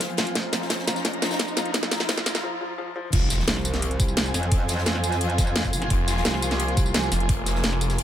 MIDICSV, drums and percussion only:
0, 0, Header, 1, 2, 480
1, 0, Start_track
1, 0, Key_signature, -4, "minor"
1, 0, Tempo, 346821
1, 490, Time_signature, 4, 2, 24, 8
1, 11115, End_track
2, 0, Start_track
2, 0, Title_t, "Drums"
2, 2, Note_on_c, 9, 38, 109
2, 10, Note_on_c, 9, 36, 105
2, 10, Note_on_c, 9, 42, 99
2, 13, Note_off_c, 9, 42, 0
2, 13, Note_on_c, 9, 42, 89
2, 133, Note_off_c, 9, 42, 0
2, 133, Note_on_c, 9, 42, 41
2, 140, Note_off_c, 9, 38, 0
2, 149, Note_off_c, 9, 36, 0
2, 239, Note_off_c, 9, 42, 0
2, 239, Note_on_c, 9, 42, 85
2, 250, Note_off_c, 9, 42, 0
2, 250, Note_on_c, 9, 38, 69
2, 250, Note_on_c, 9, 42, 62
2, 252, Note_off_c, 9, 38, 0
2, 252, Note_on_c, 9, 38, 103
2, 370, Note_off_c, 9, 42, 0
2, 370, Note_on_c, 9, 42, 39
2, 390, Note_off_c, 9, 38, 0
2, 490, Note_off_c, 9, 42, 0
2, 490, Note_on_c, 9, 36, 99
2, 490, Note_on_c, 9, 38, 81
2, 490, Note_on_c, 9, 42, 91
2, 492, Note_off_c, 9, 42, 0
2, 492, Note_on_c, 9, 42, 86
2, 629, Note_off_c, 9, 36, 0
2, 629, Note_off_c, 9, 38, 0
2, 630, Note_off_c, 9, 42, 0
2, 716, Note_on_c, 9, 38, 46
2, 731, Note_off_c, 9, 38, 0
2, 731, Note_on_c, 9, 38, 75
2, 731, Note_on_c, 9, 42, 65
2, 731, Note_on_c, 9, 54, 55
2, 737, Note_off_c, 9, 42, 0
2, 737, Note_on_c, 9, 42, 65
2, 854, Note_off_c, 9, 38, 0
2, 854, Note_on_c, 9, 38, 50
2, 869, Note_off_c, 9, 54, 0
2, 875, Note_off_c, 9, 42, 0
2, 965, Note_off_c, 9, 38, 0
2, 965, Note_on_c, 9, 38, 114
2, 969, Note_on_c, 9, 42, 96
2, 970, Note_on_c, 9, 36, 102
2, 971, Note_off_c, 9, 38, 0
2, 971, Note_off_c, 9, 42, 0
2, 971, Note_on_c, 9, 38, 72
2, 971, Note_on_c, 9, 42, 81
2, 1089, Note_off_c, 9, 38, 0
2, 1089, Note_on_c, 9, 38, 57
2, 1109, Note_off_c, 9, 36, 0
2, 1109, Note_off_c, 9, 42, 0
2, 1211, Note_off_c, 9, 38, 0
2, 1211, Note_on_c, 9, 38, 77
2, 1211, Note_on_c, 9, 42, 62
2, 1211, Note_on_c, 9, 54, 57
2, 1331, Note_off_c, 9, 38, 0
2, 1331, Note_off_c, 9, 42, 0
2, 1331, Note_off_c, 9, 54, 0
2, 1331, Note_on_c, 9, 38, 43
2, 1331, Note_on_c, 9, 42, 37
2, 1331, Note_on_c, 9, 54, 26
2, 1450, Note_off_c, 9, 38, 0
2, 1450, Note_off_c, 9, 42, 0
2, 1450, Note_on_c, 9, 36, 96
2, 1450, Note_on_c, 9, 38, 81
2, 1450, Note_on_c, 9, 42, 88
2, 1452, Note_off_c, 9, 42, 0
2, 1452, Note_on_c, 9, 42, 80
2, 1469, Note_off_c, 9, 54, 0
2, 1571, Note_off_c, 9, 42, 0
2, 1571, Note_on_c, 9, 42, 35
2, 1589, Note_off_c, 9, 36, 0
2, 1589, Note_off_c, 9, 38, 0
2, 1691, Note_off_c, 9, 42, 0
2, 1691, Note_on_c, 9, 38, 85
2, 1691, Note_on_c, 9, 42, 61
2, 1691, Note_on_c, 9, 54, 57
2, 1694, Note_off_c, 9, 42, 0
2, 1694, Note_on_c, 9, 42, 75
2, 1701, Note_off_c, 9, 38, 0
2, 1701, Note_on_c, 9, 38, 112
2, 1806, Note_off_c, 9, 42, 0
2, 1806, Note_on_c, 9, 42, 82
2, 1810, Note_off_c, 9, 38, 0
2, 1810, Note_on_c, 9, 38, 97
2, 1811, Note_off_c, 9, 54, 0
2, 1811, Note_on_c, 9, 54, 25
2, 1925, Note_off_c, 9, 38, 0
2, 1925, Note_on_c, 9, 38, 112
2, 1927, Note_off_c, 9, 42, 0
2, 1927, Note_on_c, 9, 42, 81
2, 1931, Note_off_c, 9, 38, 0
2, 1931, Note_off_c, 9, 42, 0
2, 1931, Note_on_c, 9, 36, 102
2, 1931, Note_on_c, 9, 38, 88
2, 1931, Note_on_c, 9, 42, 93
2, 1949, Note_off_c, 9, 54, 0
2, 2051, Note_on_c, 9, 54, 26
2, 2069, Note_off_c, 9, 36, 0
2, 2069, Note_off_c, 9, 38, 0
2, 2069, Note_off_c, 9, 42, 0
2, 2165, Note_on_c, 9, 42, 70
2, 2170, Note_off_c, 9, 42, 0
2, 2170, Note_off_c, 9, 54, 0
2, 2170, Note_on_c, 9, 38, 87
2, 2170, Note_on_c, 9, 42, 64
2, 2170, Note_on_c, 9, 54, 57
2, 2290, Note_off_c, 9, 42, 0
2, 2290, Note_on_c, 9, 42, 38
2, 2309, Note_off_c, 9, 38, 0
2, 2309, Note_off_c, 9, 54, 0
2, 2410, Note_off_c, 9, 42, 0
2, 2410, Note_on_c, 9, 38, 99
2, 2410, Note_on_c, 9, 42, 93
2, 2411, Note_on_c, 9, 36, 100
2, 2530, Note_off_c, 9, 38, 0
2, 2530, Note_on_c, 9, 38, 89
2, 2549, Note_off_c, 9, 36, 0
2, 2549, Note_off_c, 9, 42, 0
2, 2650, Note_off_c, 9, 38, 0
2, 2650, Note_on_c, 9, 38, 92
2, 2650, Note_on_c, 9, 42, 67
2, 2650, Note_on_c, 9, 54, 58
2, 2652, Note_off_c, 9, 42, 0
2, 2652, Note_on_c, 9, 42, 66
2, 2654, Note_off_c, 9, 38, 0
2, 2654, Note_on_c, 9, 38, 66
2, 2767, Note_off_c, 9, 38, 0
2, 2767, Note_on_c, 9, 38, 39
2, 2770, Note_off_c, 9, 38, 0
2, 2770, Note_on_c, 9, 38, 77
2, 2788, Note_off_c, 9, 54, 0
2, 2791, Note_off_c, 9, 42, 0
2, 2890, Note_off_c, 9, 38, 0
2, 2890, Note_on_c, 9, 38, 95
2, 2890, Note_on_c, 9, 42, 84
2, 2891, Note_off_c, 9, 38, 0
2, 2891, Note_on_c, 9, 36, 97
2, 2891, Note_on_c, 9, 38, 114
2, 2908, Note_off_c, 9, 42, 0
2, 2908, Note_on_c, 9, 42, 79
2, 3010, Note_off_c, 9, 38, 0
2, 3010, Note_on_c, 9, 38, 89
2, 3029, Note_off_c, 9, 36, 0
2, 3046, Note_off_c, 9, 42, 0
2, 3130, Note_off_c, 9, 38, 0
2, 3130, Note_on_c, 9, 38, 98
2, 3130, Note_on_c, 9, 42, 63
2, 3130, Note_on_c, 9, 54, 58
2, 3131, Note_off_c, 9, 42, 0
2, 3131, Note_on_c, 9, 42, 65
2, 3250, Note_off_c, 9, 38, 0
2, 3250, Note_off_c, 9, 42, 0
2, 3250, Note_off_c, 9, 54, 0
2, 3250, Note_on_c, 9, 38, 93
2, 3250, Note_on_c, 9, 42, 36
2, 3250, Note_on_c, 9, 54, 27
2, 3257, Note_off_c, 9, 38, 0
2, 3257, Note_on_c, 9, 38, 43
2, 3389, Note_off_c, 9, 42, 0
2, 3389, Note_off_c, 9, 54, 0
2, 3395, Note_off_c, 9, 38, 0
2, 4318, Note_on_c, 9, 42, 88
2, 4331, Note_off_c, 9, 42, 0
2, 4331, Note_on_c, 9, 36, 121
2, 4331, Note_on_c, 9, 42, 107
2, 4331, Note_on_c, 9, 49, 111
2, 4469, Note_off_c, 9, 42, 0
2, 4469, Note_off_c, 9, 49, 0
2, 4470, Note_off_c, 9, 36, 0
2, 4566, Note_on_c, 9, 38, 50
2, 4571, Note_on_c, 9, 42, 67
2, 4571, Note_on_c, 9, 54, 63
2, 4578, Note_off_c, 9, 42, 0
2, 4578, Note_on_c, 9, 42, 75
2, 4696, Note_off_c, 9, 38, 0
2, 4696, Note_on_c, 9, 38, 50
2, 4709, Note_off_c, 9, 54, 0
2, 4717, Note_off_c, 9, 42, 0
2, 4811, Note_off_c, 9, 38, 0
2, 4811, Note_on_c, 9, 38, 113
2, 4811, Note_on_c, 9, 42, 93
2, 4814, Note_off_c, 9, 38, 0
2, 4814, Note_on_c, 9, 38, 117
2, 4928, Note_off_c, 9, 38, 0
2, 4928, Note_on_c, 9, 38, 48
2, 4931, Note_on_c, 9, 40, 51
2, 4949, Note_off_c, 9, 42, 0
2, 5049, Note_on_c, 9, 42, 65
2, 5051, Note_off_c, 9, 42, 0
2, 5051, Note_on_c, 9, 42, 67
2, 5051, Note_on_c, 9, 54, 59
2, 5066, Note_off_c, 9, 38, 0
2, 5069, Note_off_c, 9, 40, 0
2, 5164, Note_on_c, 9, 38, 40
2, 5171, Note_off_c, 9, 38, 0
2, 5171, Note_off_c, 9, 42, 0
2, 5171, Note_on_c, 9, 38, 36
2, 5171, Note_on_c, 9, 42, 39
2, 5189, Note_off_c, 9, 54, 0
2, 5291, Note_off_c, 9, 42, 0
2, 5291, Note_on_c, 9, 42, 94
2, 5293, Note_off_c, 9, 42, 0
2, 5293, Note_on_c, 9, 42, 92
2, 5310, Note_off_c, 9, 38, 0
2, 5411, Note_off_c, 9, 42, 0
2, 5411, Note_on_c, 9, 42, 40
2, 5531, Note_off_c, 9, 42, 0
2, 5531, Note_on_c, 9, 36, 108
2, 5531, Note_on_c, 9, 42, 71
2, 5531, Note_on_c, 9, 54, 60
2, 5542, Note_off_c, 9, 42, 0
2, 5542, Note_on_c, 9, 42, 73
2, 5651, Note_off_c, 9, 54, 0
2, 5651, Note_on_c, 9, 54, 27
2, 5669, Note_off_c, 9, 36, 0
2, 5680, Note_off_c, 9, 42, 0
2, 5770, Note_on_c, 9, 38, 126
2, 5770, Note_on_c, 9, 42, 103
2, 5773, Note_off_c, 9, 38, 0
2, 5773, Note_on_c, 9, 38, 107
2, 5775, Note_off_c, 9, 42, 0
2, 5775, Note_on_c, 9, 42, 88
2, 5789, Note_off_c, 9, 54, 0
2, 5890, Note_on_c, 9, 54, 28
2, 5911, Note_off_c, 9, 38, 0
2, 5914, Note_off_c, 9, 42, 0
2, 6010, Note_off_c, 9, 54, 0
2, 6010, Note_on_c, 9, 40, 50
2, 6010, Note_on_c, 9, 42, 66
2, 6010, Note_on_c, 9, 46, 76
2, 6010, Note_on_c, 9, 54, 59
2, 6130, Note_off_c, 9, 42, 0
2, 6130, Note_on_c, 9, 42, 41
2, 6148, Note_off_c, 9, 40, 0
2, 6148, Note_off_c, 9, 46, 0
2, 6148, Note_off_c, 9, 54, 0
2, 6250, Note_off_c, 9, 42, 0
2, 6250, Note_on_c, 9, 42, 102
2, 6251, Note_off_c, 9, 42, 0
2, 6251, Note_on_c, 9, 36, 127
2, 6251, Note_on_c, 9, 42, 86
2, 6389, Note_off_c, 9, 36, 0
2, 6389, Note_off_c, 9, 42, 0
2, 6481, Note_on_c, 9, 42, 69
2, 6486, Note_on_c, 9, 38, 60
2, 6490, Note_off_c, 9, 42, 0
2, 6490, Note_on_c, 9, 42, 67
2, 6490, Note_on_c, 9, 54, 59
2, 6610, Note_off_c, 9, 38, 0
2, 6610, Note_on_c, 9, 38, 41
2, 6629, Note_off_c, 9, 42, 0
2, 6629, Note_off_c, 9, 54, 0
2, 6725, Note_off_c, 9, 38, 0
2, 6725, Note_on_c, 9, 38, 120
2, 6726, Note_on_c, 9, 42, 96
2, 6730, Note_off_c, 9, 38, 0
2, 6730, Note_off_c, 9, 42, 0
2, 6730, Note_on_c, 9, 38, 122
2, 6730, Note_on_c, 9, 42, 92
2, 6851, Note_on_c, 9, 40, 49
2, 6869, Note_off_c, 9, 38, 0
2, 6869, Note_off_c, 9, 42, 0
2, 6970, Note_on_c, 9, 42, 65
2, 6970, Note_on_c, 9, 54, 57
2, 6977, Note_off_c, 9, 42, 0
2, 6977, Note_on_c, 9, 42, 69
2, 6989, Note_off_c, 9, 40, 0
2, 7084, Note_on_c, 9, 38, 40
2, 7091, Note_off_c, 9, 42, 0
2, 7091, Note_off_c, 9, 54, 0
2, 7091, Note_on_c, 9, 42, 37
2, 7091, Note_on_c, 9, 54, 27
2, 7210, Note_off_c, 9, 42, 0
2, 7210, Note_on_c, 9, 42, 88
2, 7215, Note_off_c, 9, 42, 0
2, 7215, Note_on_c, 9, 42, 77
2, 7222, Note_off_c, 9, 38, 0
2, 7229, Note_off_c, 9, 54, 0
2, 7330, Note_off_c, 9, 42, 0
2, 7330, Note_on_c, 9, 42, 37
2, 7446, Note_on_c, 9, 38, 47
2, 7449, Note_off_c, 9, 42, 0
2, 7449, Note_on_c, 9, 42, 62
2, 7450, Note_off_c, 9, 42, 0
2, 7450, Note_on_c, 9, 42, 65
2, 7450, Note_on_c, 9, 54, 54
2, 7451, Note_on_c, 9, 36, 108
2, 7570, Note_off_c, 9, 54, 0
2, 7570, Note_on_c, 9, 54, 27
2, 7585, Note_off_c, 9, 38, 0
2, 7589, Note_off_c, 9, 36, 0
2, 7589, Note_off_c, 9, 42, 0
2, 7687, Note_on_c, 9, 42, 82
2, 7690, Note_off_c, 9, 42, 0
2, 7690, Note_on_c, 9, 38, 127
2, 7690, Note_on_c, 9, 42, 99
2, 7696, Note_off_c, 9, 38, 0
2, 7696, Note_on_c, 9, 38, 115
2, 7709, Note_off_c, 9, 54, 0
2, 7810, Note_on_c, 9, 54, 28
2, 7811, Note_off_c, 9, 42, 0
2, 7811, Note_on_c, 9, 36, 64
2, 7811, Note_on_c, 9, 42, 42
2, 7834, Note_off_c, 9, 38, 0
2, 7930, Note_off_c, 9, 42, 0
2, 7930, Note_off_c, 9, 54, 0
2, 7930, Note_on_c, 9, 42, 70
2, 7930, Note_on_c, 9, 46, 72
2, 7930, Note_on_c, 9, 54, 59
2, 7949, Note_off_c, 9, 36, 0
2, 8050, Note_off_c, 9, 42, 0
2, 8050, Note_on_c, 9, 40, 51
2, 8050, Note_on_c, 9, 42, 41
2, 8069, Note_off_c, 9, 46, 0
2, 8069, Note_off_c, 9, 54, 0
2, 8170, Note_off_c, 9, 42, 0
2, 8170, Note_on_c, 9, 42, 92
2, 8171, Note_on_c, 9, 36, 127
2, 8189, Note_off_c, 9, 40, 0
2, 8309, Note_off_c, 9, 36, 0
2, 8309, Note_off_c, 9, 42, 0
2, 8411, Note_on_c, 9, 38, 50
2, 8411, Note_on_c, 9, 42, 65
2, 8411, Note_on_c, 9, 54, 58
2, 8417, Note_off_c, 9, 42, 0
2, 8417, Note_on_c, 9, 42, 68
2, 8539, Note_off_c, 9, 38, 0
2, 8539, Note_on_c, 9, 38, 55
2, 8549, Note_off_c, 9, 54, 0
2, 8555, Note_off_c, 9, 42, 0
2, 8650, Note_off_c, 9, 38, 0
2, 8650, Note_on_c, 9, 38, 125
2, 8650, Note_on_c, 9, 42, 89
2, 8655, Note_off_c, 9, 38, 0
2, 8655, Note_on_c, 9, 38, 125
2, 8659, Note_off_c, 9, 42, 0
2, 8659, Note_on_c, 9, 42, 104
2, 8765, Note_off_c, 9, 38, 0
2, 8765, Note_on_c, 9, 38, 51
2, 8770, Note_on_c, 9, 40, 50
2, 8797, Note_off_c, 9, 42, 0
2, 8891, Note_on_c, 9, 42, 66
2, 8891, Note_on_c, 9, 54, 59
2, 8893, Note_off_c, 9, 42, 0
2, 8893, Note_on_c, 9, 42, 74
2, 8903, Note_off_c, 9, 38, 0
2, 8909, Note_off_c, 9, 40, 0
2, 9006, Note_on_c, 9, 38, 39
2, 9011, Note_off_c, 9, 38, 0
2, 9011, Note_off_c, 9, 42, 0
2, 9011, Note_on_c, 9, 38, 40
2, 9011, Note_on_c, 9, 42, 36
2, 9029, Note_off_c, 9, 54, 0
2, 9129, Note_off_c, 9, 42, 0
2, 9129, Note_on_c, 9, 42, 92
2, 9130, Note_off_c, 9, 42, 0
2, 9130, Note_on_c, 9, 42, 89
2, 9149, Note_off_c, 9, 38, 0
2, 9251, Note_off_c, 9, 42, 0
2, 9251, Note_on_c, 9, 42, 34
2, 9368, Note_off_c, 9, 42, 0
2, 9368, Note_on_c, 9, 42, 72
2, 9370, Note_off_c, 9, 42, 0
2, 9370, Note_on_c, 9, 42, 62
2, 9370, Note_on_c, 9, 54, 53
2, 9371, Note_on_c, 9, 36, 113
2, 9490, Note_off_c, 9, 54, 0
2, 9490, Note_on_c, 9, 54, 25
2, 9509, Note_off_c, 9, 36, 0
2, 9509, Note_off_c, 9, 42, 0
2, 9610, Note_on_c, 9, 38, 127
2, 9610, Note_on_c, 9, 42, 97
2, 9620, Note_off_c, 9, 42, 0
2, 9620, Note_on_c, 9, 42, 87
2, 9629, Note_off_c, 9, 54, 0
2, 9731, Note_on_c, 9, 54, 27
2, 9749, Note_off_c, 9, 38, 0
2, 9758, Note_off_c, 9, 42, 0
2, 9849, Note_on_c, 9, 42, 73
2, 9850, Note_off_c, 9, 54, 0
2, 9850, Note_on_c, 9, 40, 49
2, 9850, Note_on_c, 9, 46, 78
2, 9850, Note_on_c, 9, 54, 54
2, 9970, Note_off_c, 9, 42, 0
2, 9970, Note_on_c, 9, 42, 38
2, 9988, Note_off_c, 9, 40, 0
2, 9988, Note_off_c, 9, 46, 0
2, 9988, Note_off_c, 9, 54, 0
2, 10090, Note_off_c, 9, 42, 0
2, 10090, Note_on_c, 9, 42, 95
2, 10091, Note_on_c, 9, 36, 123
2, 10093, Note_off_c, 9, 42, 0
2, 10093, Note_on_c, 9, 42, 95
2, 10229, Note_off_c, 9, 36, 0
2, 10231, Note_off_c, 9, 42, 0
2, 10320, Note_on_c, 9, 38, 54
2, 10330, Note_on_c, 9, 42, 66
2, 10330, Note_on_c, 9, 54, 56
2, 10338, Note_off_c, 9, 42, 0
2, 10338, Note_on_c, 9, 42, 71
2, 10449, Note_off_c, 9, 38, 0
2, 10449, Note_on_c, 9, 38, 40
2, 10469, Note_off_c, 9, 54, 0
2, 10477, Note_off_c, 9, 42, 0
2, 10562, Note_on_c, 9, 42, 89
2, 10566, Note_off_c, 9, 38, 0
2, 10566, Note_on_c, 9, 38, 121
2, 10570, Note_off_c, 9, 38, 0
2, 10570, Note_off_c, 9, 42, 0
2, 10570, Note_on_c, 9, 38, 117
2, 10570, Note_on_c, 9, 42, 85
2, 10690, Note_on_c, 9, 40, 46
2, 10709, Note_off_c, 9, 38, 0
2, 10709, Note_off_c, 9, 42, 0
2, 10810, Note_on_c, 9, 42, 62
2, 10810, Note_on_c, 9, 54, 57
2, 10815, Note_off_c, 9, 42, 0
2, 10815, Note_on_c, 9, 42, 65
2, 10828, Note_off_c, 9, 40, 0
2, 10930, Note_on_c, 9, 38, 41
2, 10931, Note_off_c, 9, 42, 0
2, 10931, Note_off_c, 9, 54, 0
2, 10931, Note_on_c, 9, 42, 37
2, 10931, Note_on_c, 9, 54, 27
2, 11051, Note_off_c, 9, 42, 0
2, 11051, Note_on_c, 9, 42, 86
2, 11053, Note_off_c, 9, 42, 0
2, 11053, Note_on_c, 9, 42, 97
2, 11068, Note_off_c, 9, 38, 0
2, 11069, Note_off_c, 9, 54, 0
2, 11115, Note_off_c, 9, 42, 0
2, 11115, End_track
0, 0, End_of_file